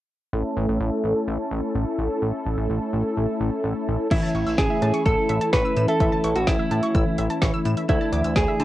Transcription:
0.33 0.43 A1 loud
0.33 4.07 A3 medium
0.33 4.07 C#4 medium
0.33 4.07 E4 medium
0.33 4.07 A4 medium
0.57 0.67 A1 loud
0.69 0.79 A1 medium
0.80 0.90 A1 loud
1.04 1.14 A1 medium
1.28 1.38 A1 loud
1.51 1.61 A1 loud
1.75 1.85 A1 loud
1.99 2.09 A1 loud
2.22 2.32 A1 medium
2.46 2.56 A1 medium
2.58 2.68 A1 medium
2.69 2.79 A1 loud
2.93 3.03 A1 loud
3.17 3.27 A1 loud
3.40 3.50 A1 loud
3.64 3.74 A1 medium
3.88 3.98 A1 loud
4.11 4.21 A1 loud
4.11 7.85 E3 medium
4.11 7.85 A3 medium
4.11 7.85 C#4 medium
4.11 7.85 E4 medium
4.11 4.60 E4 medium
4.11 4.19 E5 medium
4.11 kick loud
4.11 closed hi-hat medium
4.11 crash medium
4.23 4.31 A5 medium
4.35 4.45 A1 loud
4.35 4.43 C#6 medium
4.35 closed hi-hat medium
4.46 4.57 A1 medium
4.46 4.55 E6 medium
4.46 closed hi-hat medium
4.58 4.68 A1 loud
4.58 5.06 G#4 medium
4.58 4.66 E7 medium
4.58 kick loud
4.58 snare loud
4.58 closed hi-hat medium
4.70 4.78 E5 medium
4.82 4.92 A2 loud
4.82 4.90 A5 medium
4.82 closed hi-hat medium
4.94 5.02 C#6 medium
4.94 closed hi-hat soft
5.05 5.16 A1 loud
5.05 5.50 A4 loud
5.05 5.14 E6 medium
5.05 kick loud
5.05 closed hi-hat medium
5.29 5.39 A1 loud
5.29 5.37 E5 medium
5.29 closed hi-hat medium
5.41 5.49 A5 medium
5.41 closed hi-hat medium
5.53 5.63 A1 medium
5.53 5.88 B4 loud
5.53 5.61 C#6 medium
5.53 kick loud
5.53 snare loud
5.53 closed hi-hat medium
5.65 5.73 E6 medium
5.76 5.87 A2 medium
5.76 5.85 E7 medium
5.76 closed hi-hat medium
5.88 6.37 A4 medium
5.88 5.96 E5 medium
5.88 closed hi-hat soft
6.00 6.10 A1 loud
6.00 6.08 E5 medium
6.00 kick loud
6.00 closed hi-hat medium
6.12 6.20 A5 medium
6.24 6.34 A1 loud
6.24 6.32 C#6 medium
6.24 closed hi-hat medium
6.36 6.46 A1 medium
6.36 6.47 F#4 medium
6.36 6.44 E6 medium
6.36 closed hi-hat medium
6.47 6.57 A1 medium
6.47 7.65 E4 medium
6.47 6.55 E7 medium
6.47 kick loud
6.47 snare loud
6.47 closed hi-hat medium
6.59 6.67 E5 medium
6.71 6.81 A2 medium
6.71 6.79 A5 medium
6.71 closed hi-hat medium
6.83 6.91 C#6 medium
6.83 closed hi-hat soft
6.95 7.05 A1 loud
6.95 7.03 E6 medium
6.95 kick loud
6.95 closed hi-hat medium
7.18 7.28 A1 loud
7.18 7.26 E5 medium
7.18 closed hi-hat medium
7.30 7.38 A5 medium
7.30 closed hi-hat medium
7.42 7.52 A1 loud
7.42 7.50 C#6 medium
7.42 kick loud
7.42 snare loud
7.42 closed hi-hat medium
7.54 7.62 E6 medium
7.65 7.75 A2 loud
7.65 7.74 E7 medium
7.65 closed hi-hat medium
7.77 7.85 E5 medium
7.77 closed hi-hat soft
7.89 7.99 D2 loud
7.89 8.64 E3 medium
7.89 8.64 A3 medium
7.89 8.64 D4 medium
7.89 8.64 E4 medium
7.89 8.38 E4 medium
7.89 7.97 E5 medium
7.89 kick loud
7.89 closed hi-hat medium
8.01 8.09 A5 medium
8.13 8.23 D2 loud
8.13 8.21 D6 medium
8.13 closed hi-hat medium
8.24 8.35 D2 medium
8.24 8.33 E6 medium
8.24 closed hi-hat medium
8.36 8.46 D2 loud
8.36 8.64 G#4 medium
8.36 8.44 E7 medium
8.36 kick loud
8.36 snare loud
8.36 closed hi-hat medium
8.48 8.56 E5 medium
8.60 8.64 D3 medium
8.60 8.64 A5 medium
8.60 closed hi-hat medium

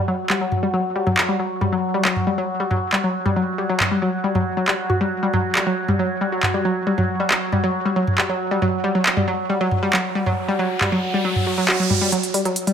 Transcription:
0.00 12.11 F#3 medium
0.00 12.11 F#4 medium
0.08 0.12 F#3 loud
0.30 0.39 G3 loud
0.30 clap loud
0.41 0.44 F#3 loud
0.52 mid tom medium
0.63 0.72 G3 loud
0.74 0.77 F#3 loud
0.95 1.05 G3 loud
1.07 1.10 F#3 loud
1.07 mid tom medium
1.17 clap loud
1.28 1.37 G3 medium
1.39 1.43 F#3 loud
1.61 1.70 G3 loud
1.61 mid tom medium
1.72 1.76 F#3 loud
1.94 2.03 G3 loud
2.05 2.09 F#3 medium
2.05 clap loud
2.16 mid tom medium
2.27 2.36 G3 loud
2.38 2.42 F#3 loud
2.60 2.69 G3 loud
2.71 2.74 F#3 loud
2.71 mid tom medium
2.93 3.02 G3 loud
2.93 clap loud
3.04 3.07 F#3 loud
3.26 3.34 G3 loud
3.26 mid tom medium
3.36 3.40 F#3 loud
3.58 3.67 G3 loud
3.69 3.73 F#3 loud
3.80 clap loud
3.80 mid tom medium
3.91 4.00 G3 loud
4.02 4.06 F#3 loud
4.24 4.33 G3 loud
4.35 4.39 F#3 loud
4.35 mid tom medium
4.57 4.63 F#3 loud
4.68 4.71 G3 medium
4.68 clap loud
4.90 4.96 F#4 medium
4.90 mid tom medium
5.01 5.04 G3 loud
5.23 5.31 G3 loud
5.33 5.37 F#3 loud
5.33 mid tom medium
5.55 5.64 G3 loud
5.55 clap loud
5.67 5.70 F#3 loud
5.88 5.97 G3 loud
5.88 mid tom medium
5.99 6.03 F#3 loud
6.21 6.30 G3 loud
6.32 6.36 F#3 loud
6.43 clap loud
6.43 mid tom medium
6.54 6.63 G3 medium
6.65 6.68 F#3 loud
6.87 6.96 G3 loud
6.98 7.01 F#3 loud
6.98 mid tom medium
7.20 7.29 G3 loud
7.31 7.34 F#3 loud
7.31 clap loud
7.52 7.62 G3 loud
7.52 mid tom medium
7.64 7.67 F#3 loud
7.85 7.94 G3 loud
7.96 8.00 F#3 loud
8.07 mid tom medium
8.18 8.27 G3 loud
8.18 clap loud
8.29 8.33 F#3 medium
8.51 8.60 G3 loud
8.62 8.66 F#3 loud
8.62 mid tom medium
8.62 riser medium
8.84 8.93 G3 loud
8.95 8.98 F#3 loud
9.06 clap loud
9.17 9.26 G3 loud
9.17 mid tom medium
9.28 9.31 F#3 loud
9.49 9.59 G3 loud
9.61 9.64 F#3 loud
9.71 mid tom medium
9.83 9.91 G3 loud
9.93 9.97 F#3 loud
9.93 clap loud
10.15 10.24 G3 loud
10.26 10.30 F#3 loud
10.26 mid tom medium
10.48 10.57 G3 loud
10.59 10.63 F#3 loud
10.81 10.90 G3 loud
10.81 clap loud
10.81 mid tom medium
10.92 10.96 F#3 loud
11.14 11.23 G3 loud
11.25 11.28 F#3 loud
11.36 mid tom medium
11.47 11.56 F#3 medium
11.58 11.66 F#3 medium
11.68 11.78 F#4 loud
11.68 clap loud
11.80 11.83 F#3 medium
11.90 11.96 G3 medium
11.90 mid tom medium
12.01 12.10 G3 loud
12.12 12.16 F#3 loud
12.12 12.73 F#3 medium
12.12 12.73 F#4 medium
12.12 closed hi-hat medium
12.23 closed hi-hat medium
12.34 12.43 G3 loud
12.34 open hi-hat loud
12.45 12.49 F#3 loud
12.45 closed hi-hat medium
12.56 closed hi-hat medium
12.67 12.73 G3 loud
12.67 closed hi-hat medium

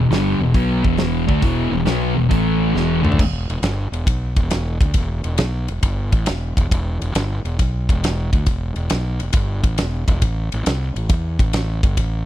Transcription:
0.10 0.38 G1 medium
0.10 0.39 G2 medium
0.10 0.39 D3 loud
0.10 0.40 G3 loud
0.10 snare loud
0.10 open hi-hat soft
0.39 0.52 E1 medium
0.39 0.52 E2 medium
0.39 0.52 B2 medium
0.54 0.82 B1 medium
0.54 0.83 B2 medium
0.54 0.83 F#3 loud
0.54 0.84 B3 loud
0.54 kick loud
0.54 open hi-hat soft
0.83 1.25 E1 medium
0.83 1.27 E2 medium
0.83 1.27 B2 medium
0.83 1.27 E3 loud
0.83 kick loud
0.97 snare loud
0.97 open hi-hat soft
1.27 1.42 D2 medium
1.27 1.41 D3 medium
1.27 1.41 A3 medium
1.27 1.42 D4 loud
1.27 kick loud
1.42 1.70 E1 medium
1.42 1.70 E2 medium
1.42 1.70 B2 medium
1.42 1.72 E3 medium
1.42 kick loud
1.42 open hi-hat soft
1.71 1.85 E1 medium
1.71 1.83 E2 medium
1.71 1.83 B2 medium
1.86 2.14 B1 medium
1.86 2.15 B2 medium
1.86 2.15 F#3 loud
1.86 2.15 B3 medium
1.86 snare loud
1.86 open hi-hat soft
2.15 2.30 E1 medium
2.15 2.27 E2 medium
2.15 2.27 B2 medium
2.29 2.72 A1 medium
2.29 2.74 A2 medium
2.29 2.74 E3 loud
2.29 2.74 A3 loud
2.29 kick loud
2.29 open hi-hat soft
2.74 3.02 E1 medium
2.74 3.03 E2 medium
2.74 3.02 B2 medium
2.74 3.03 E3 medium
2.74 snare medium
3.02 3.18 D2 medium
3.02 3.17 D3 medium
3.02 3.18 A3 medium
3.02 3.18 D4 medium
3.02 mid tom medium
3.12 floor tom medium
3.19 3.47 E1 medium
3.19 kick loud
3.19 crash loud
3.50 3.62 E1 medium
3.50 ride medium
3.62 3.90 G1 medium
3.62 snare loud
3.62 ride medium
3.92 4.05 E1 medium
3.92 ride medium
4.07 4.35 B1 medium
4.07 kick loud
4.07 ride medium
4.36 4.78 E1 medium
4.36 kick loud
4.36 ride medium
4.50 snare loud
4.50 ride medium
4.81 4.94 D2 medium
4.81 kick loud
4.81 ride medium
4.94 5.22 E1 medium
4.94 kick loud
4.94 ride medium
5.24 5.38 E1 medium
5.24 ride medium
5.38 5.66 B1 medium
5.38 snare loud
5.38 ride medium
5.68 5.82 E1 medium
5.68 ride medium
5.83 6.10 G1 medium
5.83 kick loud
5.83 ride medium
6.12 6.26 A1 medium
6.12 kick loud
6.12 ride medium
6.26 6.55 E1 medium
6.26 snare loud
6.26 ride loud
6.57 6.70 E1 medium
6.57 kick loud
6.57 ride medium
6.71 6.99 E1 medium
6.71 kick loud
6.71 ride medium
7.02 7.14 E1 medium
7.02 ride medium
7.15 7.43 G1 medium
7.15 snare loud
7.15 ride medium
7.45 7.58 E1 medium
7.45 ride medium
7.59 7.87 B1 medium
7.59 kick loud
7.59 ride medium
7.89 8.30 E1 medium
7.89 kick loud
7.89 ride medium
8.04 snare loud
8.04 ride medium
8.33 8.46 D2 medium
8.33 kick medium
8.33 ride medium
8.46 8.74 E1 medium
8.46 kick loud
8.46 ride medium
8.76 8.89 E1 medium
8.76 ride medium
8.90 9.19 B1 medium
8.90 snare loud
8.90 ride medium
9.20 9.34 E1 medium
9.20 ride medium
9.33 9.62 G1 medium
9.33 kick loud
9.33 ride medium
9.64 9.77 A1 medium
9.64 kick loud
9.64 ride medium
9.78 10.07 E1 medium
9.78 snare loud
9.78 ride medium
10.08 10.21 E1 medium
10.08 kick loud
10.08 ride medium
10.22 10.50 A1 medium
10.22 kick loud
10.22 ride medium
10.52 10.66 A1 medium
10.52 ride medium
10.66 10.94 C2 medium
10.66 snare loud
10.66 ride medium
10.96 11.09 A1 medium
10.96 ride medium
11.09 11.37 E2 medium
11.09 kick loud
11.09 ride medium
11.39 11.80 A1 medium
11.39 kick loud
11.39 ride medium
11.53 snare loud
11.53 ride medium
11.83 11.96 G1 loud
11.83 kick loud
11.83 ride medium
11.97 12.25 A1 medium
11.97 kick loud
11.97 ride medium

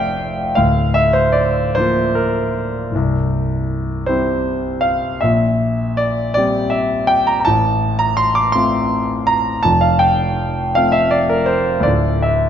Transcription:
0.00 0.54 F1 medium
0.00 0.54 F2 medium
0.00 0.54 F3 soft
0.00 0.54 A3 soft
0.00 0.54 F4 medium
0.00 0.59 C5 loud
0.00 0.59 D5 medium
0.00 0.60 E5 loud
0.00 0.55 F5 medium
0.00 0.56 G5 loud
0.55 2.90 D1 medium
0.55 2.90 D2 medium
0.55 0.95 F5 medium
0.94 1.15 E5 medium
1.13 1.34 C5 medium
1.32 1.74 D5 medium
1.75 2.91 F3 soft
1.75 2.91 A#3 soft
1.75 2.91 F4 medium
1.75 2.16 C5 medium
2.15 2.55 A#4 medium
2.91 5.16 C1 medium
2.95 5.18 C2 medium
4.06 5.18 G3 soft
4.06 5.18 C4 soft
4.06 5.18 E4 soft
4.06 4.82 C5 medium
4.81 5.20 F5 medium
5.21 7.42 A#1 medium
5.21 7.42 A#2 medium
5.21 5.98 E5 medium
5.97 6.33 D5 medium
6.34 7.43 G3 soft
6.34 7.43 C4 soft
6.34 7.43 G4 medium
6.34 6.72 D5 loud
6.70 7.08 E5 medium
7.07 7.26 G5 loud
7.27 7.39 A#5 medium
7.40 7.46 A#5 medium
7.45 9.61 A1 medium
7.45 9.61 A2 medium
7.45 8.00 A5 loud
7.99 8.18 A#5 loud
8.17 8.35 C6 loud
8.35 8.53 D6 loud
8.52 9.61 A3 soft
8.52 9.61 C4 soft
8.52 9.61 F4 medium
8.52 9.26 C6 loud
9.27 9.64 A#5 loud
9.63 11.81 F1 medium
9.63 11.81 F2 medium
9.63 9.82 A5 loud
9.81 10.00 F5 medium
9.99 10.74 G5 medium
10.75 11.82 A3 soft
10.75 11.82 C4 soft
10.75 11.82 F4 medium
10.75 10.93 F5 loud
10.92 11.11 E5 medium
11.11 11.29 D5 medium
11.29 11.48 A#4 medium
11.46 11.84 C5 medium
11.80 12.49 D2 medium
11.80 12.21 D5 medium
11.86 12.49 D1 medium
11.86 12.49 A3 soft
11.86 12.49 D4 soft
11.86 12.49 F4 soft
12.22 12.49 E5 medium

